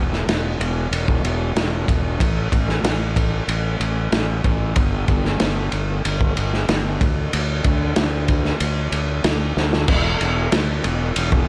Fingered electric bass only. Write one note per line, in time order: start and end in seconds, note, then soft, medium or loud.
0.00 0.24 E1 medium
0.27 0.56 E1 medium
0.59 0.88 E1 medium
0.91 1.19 E1 medium
1.23 1.52 E1 medium
1.88 2.16 E1 medium
2.21 2.48 A1 medium
2.52 2.80 A1 medium
2.83 3.39 A1 medium
3.48 3.76 A1 medium
3.80 4.08 A1 medium
4.12 4.40 A1 medium
4.45 4.72 A1 medium
4.77 5.04 G1 medium
5.08 5.36 G1 medium
5.40 5.68 G1 medium
5.73 6.00 G1 medium
6.05 6.33 G1 medium
6.37 6.65 G1 medium
6.68 6.96 G1 medium
7.01 7.28 D2 medium
7.33 7.61 D2 medium
7.65 7.92 D2 medium
7.97 8.52 D2 medium
8.60 8.88 D2 medium
8.92 9.20 D2 medium
9.24 9.52 D2 medium
9.57 9.84 D2 medium
9.88 10.15 E1 medium
10.21 10.47 E1 medium
10.52 10.79 D2 medium
10.85 11.11 E1 medium
11.16 11.43 E1 medium